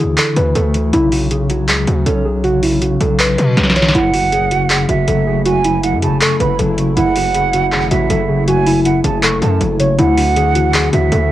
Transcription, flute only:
3.95 F#5
4.89 E5
5.46 G#5
5.84 F#5
6.02 A5
6.21 C#6
6.40 B5
6.97 F#5
7.91 E5
8.48 G#5
8.85 F#5
9.04 A5
9.23 C#6
9.42 A5
9.98 F#5
10.93 E5

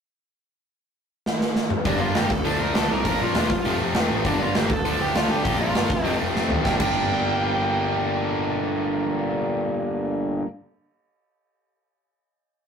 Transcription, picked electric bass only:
1.85 G1
2.15 G1
2.30 D2
2.45 D2
2.60 D2
2.76 D2
2.90 C2
3.05 A#1
3.20 A#1
3.34 E1
3.50 F1
3.65 F1
3.80 F1
3.95 F1
4.10 A1
4.25 G1
4.54 G1
4.70 D2
4.85 D2
4.99 D2
5.14 D2
5.29 D2
5.45 A#1
5.59 A#1
5.75 G1
5.90 F1
6.04 F1
6.21 F1
6.35 F1
6.50 D#2
6.65 G1
6.80 G1

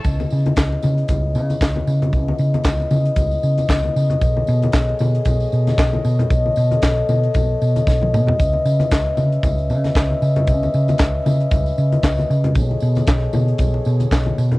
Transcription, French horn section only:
0.05 C#3 B3 E4 D#5
4.21 G#4 A4 C#5
6.30 A4
8.39 C#4 B4 E5
12.56 B3 G#4 A4 C#5 D#5

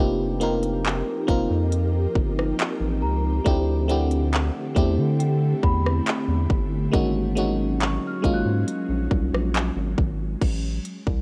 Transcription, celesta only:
Already playing: F#5
0.41 G5
3.02 A#5
3.90 F#5
5.19 G5
5.63 B5
7.81 C#6
8.07 F6
8.34 F#6

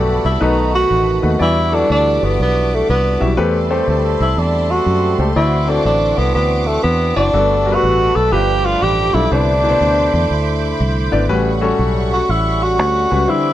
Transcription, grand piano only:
Already playing: G2 A3 F#4 G4 A4
0.41 B2 A3 D#4 F#4 B4
1.23 A3 D#4 F#4 B4
1.39 E3 G3 E4 F#4 D5
1.72 F#3 E4 F#4 A4
1.78 G3
3.20 G3 E4 F#4 E5
3.37 E3 A3 C4 G4 B4
3.70 A3 C4 G4 C5
5.19 A3 C4 G4 A4
5.36 D3 C4 E4 F#4 D5
5.68 C4 E4 F#4 A4
7.16 C4 E4 F#4 D5
7.34 G2 G3 B3 F#4 A4
7.66 G3 B3 F#4 A#4
7.72 B4
8.32 G2 G3 D4 F4 B4
9.14 G3 D4 F4 A4
9.31 C3 B3 D4 E4 C5
9.64 B2 D4 E4 B4
9.70 C5
11.12 B3 D4 E4 D5
11.29 A2 G3 C#4 F#4 B4
11.61 G3 C#4 F#4 A4
13.11 G3 C#4 F#4 B4
13.28 D3 G3 D4 E4 C5

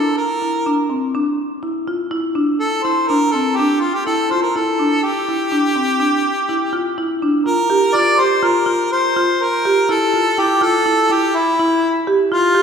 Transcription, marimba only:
0.42 E4
0.66 D4
0.90 C4
1.14 D4
1.63 E4
1.88 F4
2.11 E4
2.35 D4
2.85 E4
3.10 D4
3.34 C4
3.59 D4
4.07 E4
4.31 F4
4.56 E4
4.79 D4
5.29 E4
5.52 D4
5.76 C4
6.00 D4
6.49 E4
6.73 F4
6.98 E4
7.22 D4
7.46 F4
7.70 G4
7.95 F4
8.19 G4
8.43 F4
8.66 F4
9.17 F4
9.65 G4
9.89 E4
10.14 F4
10.38 E4
10.61 F4
10.86 E4
11.10 E4
11.59 E4
12.07 G4
12.32 F4
12.55 G4

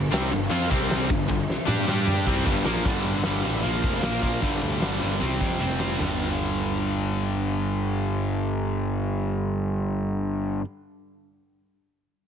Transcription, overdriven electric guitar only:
0.12 C3 G3 C4
0.32 G2 D3
0.51 F3 C4 F4
0.70 C3 G3 C4
1.10 G2 D3
1.28 G2 D3
1.67 G3 D4 G4
1.86 G3 D4 G4
2.25 C3 G3 C4
2.44 G2 D3 G3
2.65 A#2 F3 A#3
2.86 G2 D3 G3
3.25 G2 D3 G3
3.44 G2 D3 G3
3.62 A#2 F3 A#3
4.02 A#2 F3 A#3
4.22 A#2 F3 A#3
4.41 G2 D3 G3
4.81 G2 D3 G3
5.01 G2 D3 G3
5.20 C3 G3 C4
5.60 C3 G3 C4
5.80 C3 G3 C4
5.97 G2 D3
6.01 G3

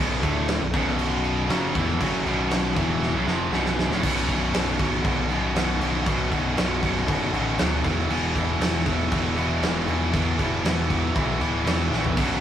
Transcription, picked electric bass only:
Already playing: B0
0.23 D1
0.61 B0
0.74 B0
1.49 F#1
1.75 E1
2.01 F#1
2.26 B0
2.76 E1
3.14 B0
3.27 F1
3.52 B0
3.90 D1
4.03 B0
4.29 B0
4.53 B0
5.05 B0
5.55 B0
5.80 B0
6.06 B0
6.32 B0
6.57 B0
7.08 F#1
7.33 A1
7.59 D1
7.85 E1
8.10 E1
8.36 E1
8.60 E1
9.12 E1
9.63 E1
9.88 E1
10.13 E1
10.39 E1
10.64 E1
11.16 B1
11.41 D1
11.66 E1
11.92 A#1
12.17 B0

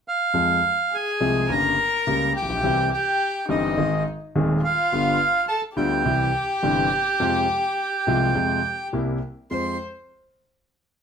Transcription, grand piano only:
0.34 F2 F3 G#3 C4 G#4
1.20 C2 C3 F3 G#3 C4 G#4
1.49 G1 G2 C#3 G3 A#3 G4
2.07 C#2 C#3 G3 A#3 G4
2.43 A1
2.50 A#1
2.57 B1
2.63 C2 C3 E3 G3 C4 G4
3.49 G1 G2 E3 G3 C4 G4
3.78 G#1 G#2 D#3 G#3 C4 G#4
4.35 D#1 D#2 D#3 G#3 C4 G#4
4.92 G1 G2 D3 G3 B3 F4
5.77 D2 D3 G3 B3 F4
6.05 C2 C3 E3 G3 E4
6.63 G1 G2 C3 E3 G3 E4
7.20 F2 C3 F3 G#3 F4
8.07 C2 C3 F3 G#3 F4
8.35 F2 C3 F3 G#3 F4
8.93 C2 C3 G3 A#3 E4
9.51 F2 G#3 C4 F4

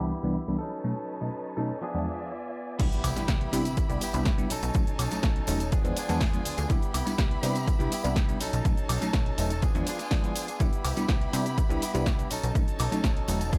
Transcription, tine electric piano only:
0.00 C2 E3 G3 B3 D4
0.23 C2 E3 G3 B3 D4
0.48 C2 E3 G3 B3 D4
0.84 B2 F#3 A3 C#4 D#4
1.21 B2 F#3 A3 C#4 D#4
1.57 B2 F#3 A3 C#4 D#4
1.94 E2 F3 G#3 B3 D4
2.79 G3 B3 D4 E4
3.16 G3 B3 D4 E4
3.52 G3 B3 D4 E4
3.89 G3 B3 D4 E4
4.14 G3 B3 D4 E4
4.38 G3 B3 D4 E4
4.74 F#3 A3 C#4 D#4
5.11 F#3 A3 C#4 D#4
5.47 F#3 A3 C#4 D#4
5.84 F3 G#3 B3 D4
6.09 F3 G#3 B3 D4
6.33 F3 G#3 B3 D4
6.69 G3 B3 D4 E4
7.06 G3 B3 D4 E4
7.42 G3 B3 D4 E4
7.79 G3 B3 D4 E4
8.04 G3 B3 D4 E4
8.28 G3 B3 D4 E4
8.65 F#3 A3 C#4 D#4
9.02 F#3 A3 C#4 D#4
9.38 F#3 A3 C#4 D#4
9.75 F3 G#3 B3 D4
10.11 F3 G#3 B3 D4
10.24 F3 G#3 B3 E4
10.60 G3 B3 D4 E4
10.97 G3 B3 D4 E4
11.33 G3 B3 D4 E4
11.69 G3 B3 D4 E4
11.94 G3 B3 D4 E4
12.19 G3 B3 D4 E4
12.55 F#3 A3 C#4 D#4
12.92 F#3 A3 C#4 D#4
13.28 F#3 A3 C#4 D#4

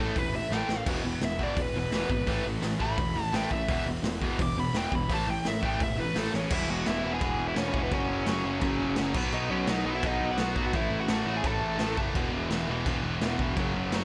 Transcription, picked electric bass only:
0.16 E1
0.50 A1
0.69 A1
0.86 E1
1.05 E1
1.22 E1
1.57 E1
1.75 E1
1.92 E1
2.10 G#1
2.27 A1
2.45 A1
2.62 A1
2.80 A1
2.97 E1
3.33 A1
3.51 A1
3.69 E1
3.86 E1
4.04 E1
4.39 E1
4.57 E1
4.74 E1
4.92 E1
5.09 A1
5.27 A1
5.45 A1
5.63 A1
5.80 E1
6.16 A1
6.34 A1
6.51 E1
6.70 E1
6.87 E1
7.04 E1
7.21 E1
7.38 E1
7.56 E1
7.74 E1
7.91 F#1
8.09 F#1
8.27 F#1
8.45 F#1
8.61 F#1
8.81 F#1
8.98 F#1
9.15 B1
9.33 B1
9.50 B1
9.67 B1
9.86 B1
10.03 B1
10.21 B1
10.38 B1
10.56 B1
10.73 A1
10.90 A1
11.08 A1
11.25 A1
11.44 A1
11.61 A1
11.79 A1
11.97 F#1
12.15 E1
12.34 E1
12.51 E1
12.68 E1
12.86 E1
13.03 E1
13.22 E1
13.39 E1
13.57 F#1
13.74 F#1
13.92 F#1

